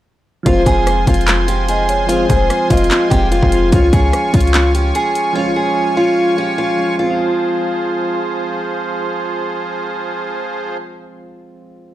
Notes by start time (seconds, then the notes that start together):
0.43 F1 F3 G#3 C4 F4 C5 G#5 C6, kick, closed hi-hat
0.49 F4
0.66 F1 G#4, kick, closed hi-hat
0.87 cross-stick, closed hi-hat
1.05 F1 F3 G#3 C4 F4, kick, closed hi-hat
1.10 F4, closed hi-hat
1.21 closed hi-hat
1.28 clap, closed hi-hat
1.48 G4, closed hi-hat
1.69 G#4 D#5, closed hi-hat
1.89 C#5, closed hi-hat
2.07 F3 G#3 C4 F4 C5, closed hi-hat
2.12 G#4
2.29 F1 G#4, kick, closed hi-hat
2.50 cross-stick, closed hi-hat
2.68 F1 F3 G#3 C4 F4 D#5, kick, closed hi-hat
2.73 F4
2.77 closed hi-hat
2.84 closed hi-hat
2.91 clap, closed hi-hat
3.09 F1 F3 G#3 C4 G4, kick, closed hi-hat
3.14 F4
3.31 F4, closed hi-hat
3.43 F1, kick
3.49 F3 G#3 C4, closed hi-hat
3.55 F4
3.70 C#2 F3 G#3 C#4 F4 C#5 C#6, kick, closed hi-hat
3.75 F4
3.93 C#2 G#4, kick, closed hi-hat
4.13 cross-stick, closed hi-hat
4.31 C#2 F3 G#3 C#4 F4, kick, closed hi-hat
4.37 F4
4.41 closed hi-hat
4.47 closed hi-hat
4.54 clap, closed hi-hat
4.75 G4, closed hi-hat
4.95 G#4, closed hi-hat
5.15 closed hi-hat
5.33 F3 G#3 C#4 F4
5.39 F4
5.56 G#4
5.94 F3 G#3 C#4 F4
6.00 F4
6.35 F3 G#3 C#4 G4
6.41 F4
6.58 F4
6.76 F3 G#3 C#4
6.82 F4
6.88 F3
6.95 F3 G#3 F4 G#4 C5
7.03 C4
7.10 F4